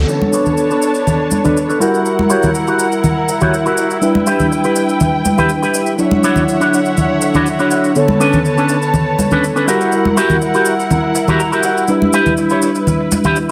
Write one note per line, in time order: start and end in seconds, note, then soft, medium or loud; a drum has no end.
0.00 0.18 D3 medium
0.00 0.19 C#4 medium
0.08 1.78 B3 medium
0.08 1.78 D4 medium
0.08 1.79 D4 medium
0.08 1.78 A4 medium
0.08 1.79 B4 medium
0.08 1.79 C#5 medium
0.08 1.79 A5 medium
0.08 closed hi-hat medium
0.08 cabasa soft
0.22 closed hi-hat soft
0.22 high conga medium
0.33 0.52 D4 medium
0.33 0.52 A4 medium
0.33 0.52 B4 medium
0.33 0.52 C#5 loud
0.33 open hi-hat medium
0.33 cabasa medium
0.46 low conga medium
0.46 cabasa soft
0.57 closed hi-hat medium
0.57 cabasa soft
0.70 0.89 D4 medium
0.70 0.89 A4 medium
0.70 0.89 B4 medium
0.70 0.89 C#5 medium
0.70 closed hi-hat soft
0.70 cabasa soft
0.82 open hi-hat medium
0.82 cabasa medium
0.94 closed hi-hat soft
0.94 cabasa soft
1.07 muted clean electric guitar stroke soft
1.07 closed hi-hat medium
1.07 low conga medium
1.07 cabasa soft
1.20 closed hi-hat soft
1.31 open hi-hat medium
1.31 high conga medium
1.31 cabasa medium
1.44 1.56 D4 medium
1.44 1.56 A4 medium
1.44 1.56 B4 medium
1.44 1.57 D5 loud
1.44 closed hi-hat soft
1.44 low conga medium
1.44 cabasa soft
1.56 closed hi-hat medium
1.56 cabasa soft
1.69 1.80 D4 medium
1.69 1.81 A4 medium
1.69 1.81 B4 medium
1.69 1.80 C#5 medium
1.69 cabasa soft
1.80 3.99 G3 medium
1.80 2.21 E4 medium
1.80 3.99 E4 medium
1.80 5.95 E4 medium
1.80 2.21 F#4 medium
1.80 2.21 G4 medium
1.80 4.00 A#4 medium
1.80 2.21 A#4 medium
1.80 4.00 A#4 medium
1.80 4.00 F#5 medium
1.80 open hi-hat medium
1.80 cabasa medium
1.94 closed hi-hat soft
1.94 cabasa soft
2.06 closed hi-hat medium
2.06 cabasa soft
2.19 closed hi-hat soft
2.19 high conga medium
2.30 2.49 E4 loud
2.30 2.49 F#4 medium
2.30 2.49 G4 medium
2.30 2.49 C#5 loud
2.30 open hi-hat loud
2.30 cabasa medium
2.43 low conga medium
2.43 cabasa soft
2.55 closed hi-hat medium
2.55 cabasa soft
2.67 2.86 E4 medium
2.67 2.86 F#4 medium
2.67 2.86 G4 medium
2.67 2.86 A#4 medium
2.67 closed hi-hat soft
2.67 cabasa soft
2.79 open hi-hat medium
2.79 cabasa medium
2.92 closed hi-hat soft
2.92 cabasa soft
3.03 muted clean electric guitar stroke soft
3.03 closed hi-hat medium
3.03 low conga medium
3.03 cabasa soft
3.17 closed hi-hat soft
3.29 open hi-hat medium
3.29 cabasa medium
3.41 3.53 E4 medium
3.41 3.53 F#4 medium
3.41 3.53 G4 medium
3.41 3.53 C#5 medium
3.41 closed hi-hat soft
3.41 low conga medium
3.41 cabasa soft
3.53 closed hi-hat medium
3.53 cabasa soft
3.66 3.96 E4 medium
3.66 3.96 F#4 medium
3.66 3.97 G4 medium
3.66 3.97 A#4 medium
3.66 cabasa soft
3.77 open hi-hat medium
3.77 cabasa medium
3.90 closed hi-hat soft
3.90 cabasa soft
4.01 5.96 G3 medium
4.01 5.96 D4 medium
4.01 5.96 E4 medium
4.01 5.97 B4 medium
4.01 5.97 G5 medium
4.01 closed hi-hat medium
4.01 cabasa soft
4.15 closed hi-hat soft
4.15 high conga medium
4.26 4.45 E4 loud
4.26 4.46 G4 medium
4.26 4.46 B4 loud
4.26 open hi-hat loud
4.26 cabasa medium
4.40 closed hi-hat soft
4.40 low conga medium
4.40 cabasa soft
4.51 closed hi-hat medium
4.51 cabasa soft
4.64 4.82 E4 medium
4.64 4.83 G4 medium
4.64 4.83 B4 medium
4.64 closed hi-hat soft
4.64 cabasa soft
4.76 open hi-hat medium
4.76 cabasa medium
4.89 closed hi-hat soft
4.89 cabasa soft
5.00 muted clean electric guitar stroke soft
5.00 closed hi-hat medium
5.00 low conga medium
5.00 cabasa soft
5.14 closed hi-hat soft
5.25 open hi-hat loud
5.25 high conga medium
5.25 cabasa medium
5.38 5.50 E4 loud
5.38 5.50 G4 medium
5.38 5.50 B4 loud
5.38 low conga medium
5.38 cabasa soft
5.49 closed hi-hat medium
5.49 cabasa soft
5.62 5.93 E4 medium
5.62 5.93 G4 medium
5.62 5.94 B4 medium
5.62 cabasa soft
5.74 open hi-hat medium
5.74 cabasa medium
5.86 closed hi-hat soft
5.86 cabasa soft
5.98 9.64 D3 medium
5.98 7.92 F#3 medium
5.98 7.93 D4 medium
5.98 7.93 E4 medium
5.98 7.94 C#5 medium
5.98 7.93 C#5 medium
5.98 7.94 E5 medium
5.98 7.94 F#5 medium
5.98 closed hi-hat medium
5.98 cabasa soft
6.11 closed hi-hat soft
6.11 high conga medium
6.23 6.42 D4 loud
6.23 6.42 E4 medium
6.23 6.43 F#4 medium
6.23 6.43 C#5 loud
6.23 open hi-hat loud
6.23 cabasa medium
6.36 closed hi-hat soft
6.36 low conga medium
6.36 cabasa soft
6.48 closed hi-hat medium
6.48 cabasa soft
6.60 6.79 D4 medium
6.60 6.79 E4 medium
6.60 6.79 F#4 medium
6.60 6.80 C#5 medium
6.60 cabasa soft
6.73 open hi-hat medium
6.73 cabasa medium
6.85 closed hi-hat soft
6.85 cabasa soft
6.97 muted clean electric guitar stroke soft
6.97 closed hi-hat medium
6.97 low conga medium
6.97 cabasa soft
7.11 closed hi-hat soft
7.21 open hi-hat loud
7.21 cabasa medium
7.34 7.46 D4 medium
7.34 7.47 E4 medium
7.34 7.47 F#4 medium
7.34 7.47 C#5 loud
7.34 closed hi-hat soft
7.34 low conga medium
7.34 cabasa soft
7.46 closed hi-hat medium
7.46 cabasa soft
7.59 7.90 D4 medium
7.59 7.90 E4 medium
7.59 7.90 F#4 medium
7.59 7.90 C#5 medium
7.59 cabasa soft
7.71 open hi-hat medium
7.71 cabasa medium
7.84 closed hi-hat soft
7.84 cabasa soft
7.95 9.65 D3 medium
7.95 9.65 B3 medium
7.95 9.65 A4 medium
7.95 9.66 B4 medium
7.95 9.66 C#5 medium
7.95 9.66 A5 medium
7.95 closed hi-hat medium
7.95 cabasa soft
8.08 closed hi-hat soft
8.08 high conga medium
8.20 8.39 C#4 loud
8.20 8.39 D4 medium
8.20 8.39 A4 medium
8.20 8.39 B4 loud
8.20 open hi-hat medium
8.20 cabasa medium
8.33 closed hi-hat soft
8.33 low conga medium
8.33 cabasa soft
8.45 closed hi-hat medium
8.45 cabasa soft
8.57 8.76 C#4 medium
8.57 8.76 D4 medium
8.57 8.76 A4 medium
8.57 8.76 B4 medium
8.57 closed hi-hat soft
8.57 cabasa soft
8.69 open hi-hat medium
8.69 cabasa medium
8.82 closed hi-hat soft
8.82 cabasa soft
8.94 muted clean electric guitar stroke soft
8.94 closed hi-hat medium
8.94 low conga medium
8.94 cabasa soft
9.07 closed hi-hat soft
9.19 open hi-hat loud
9.19 high conga medium
9.19 cabasa medium
9.31 9.43 C#4 loud
9.31 9.43 D4 medium
9.31 9.43 A4 loud
9.31 9.44 B4 loud
9.31 closed hi-hat soft
9.31 low conga medium
9.31 cabasa soft
9.43 closed hi-hat medium
9.43 cabasa soft
9.56 9.68 C#4 medium
9.56 9.67 D4 medium
9.56 9.68 A4 medium
9.56 9.68 B4 medium
9.56 cabasa soft
9.67 11.86 G3 medium
9.67 11.86 E4 medium
9.67 10.08 E4 medium
9.67 13.51 E4 medium
9.67 10.08 F#4 medium
9.67 10.08 G4 medium
9.67 11.87 A#4 medium
9.67 10.08 A#4 medium
9.67 11.87 A#4 medium
9.67 11.87 F#5 medium
9.67 open hi-hat medium
9.67 cabasa medium
9.81 closed hi-hat soft
9.81 cabasa soft
9.92 closed hi-hat medium
9.92 cabasa soft
10.05 closed hi-hat soft
10.05 high conga medium
10.17 10.36 E4 loud
10.17 10.36 F#4 medium
10.17 10.36 G4 medium
10.17 10.36 A#4 loud
10.17 open hi-hat medium
10.17 cabasa medium
10.30 closed hi-hat soft
10.30 low conga medium
10.30 cabasa soft
10.42 closed hi-hat medium
10.42 cabasa soft
10.54 10.73 E4 medium
10.54 10.73 F#4 medium
10.54 10.73 G4 medium
10.54 10.73 A#4 medium
10.54 closed hi-hat soft
10.54 cabasa soft
10.65 open hi-hat medium
10.65 cabasa medium
10.79 closed hi-hat soft
10.79 cabasa soft
10.90 muted clean electric guitar stroke soft
10.90 closed hi-hat medium
10.90 low conga medium
10.90 cabasa soft
11.04 closed hi-hat soft
11.15 open hi-hat loud
11.15 cabasa medium
11.28 11.39 E4 medium
11.28 11.40 F#4 loud
11.28 11.40 G4 medium
11.28 11.40 A#4 medium
11.28 closed hi-hat soft
11.28 low conga medium
11.28 cabasa soft
11.40 11.52 A#5 medium
11.40 closed hi-hat medium
11.40 cabasa soft
11.52 11.64 E4 medium
11.52 11.83 F#4 medium
11.52 11.83 G4 medium
11.52 11.84 A#4 medium
11.52 cabasa soft
11.63 11.87 F#5 medium
11.63 open hi-hat medium
11.63 cabasa medium
11.77 closed hi-hat soft
11.77 cabasa soft
11.88 13.51 G3 medium
11.88 13.51 D4 medium
11.88 13.51 E4 medium
11.88 13.51 B4 medium
11.88 closed hi-hat medium
11.88 cabasa soft
12.02 closed hi-hat soft
12.02 high conga medium
12.13 12.32 E4 loud
12.13 12.33 G4 medium
12.13 12.33 B4 loud
12.13 open hi-hat medium
12.13 cabasa medium
12.26 closed hi-hat soft
12.26 low conga medium
12.26 cabasa soft
12.37 closed hi-hat medium
12.37 cabasa soft
12.50 12.69 E4 medium
12.50 12.69 G4 medium
12.50 12.70 C#5 medium
12.50 closed hi-hat soft
12.50 cabasa soft
12.62 open hi-hat medium
12.62 cabasa medium
12.75 closed hi-hat soft
12.75 cabasa soft
12.87 muted clean electric guitar stroke soft
12.87 closed hi-hat medium
12.87 low conga medium
12.87 cabasa soft
13.00 closed hi-hat soft
13.12 open hi-hat medium
13.12 high conga medium
13.12 cabasa medium
13.24 13.37 E4 loud
13.24 13.37 G4 medium
13.24 13.37 B4 loud
13.24 closed hi-hat soft
13.24 low conga medium
13.24 cabasa soft
13.36 closed hi-hat medium
13.36 cabasa soft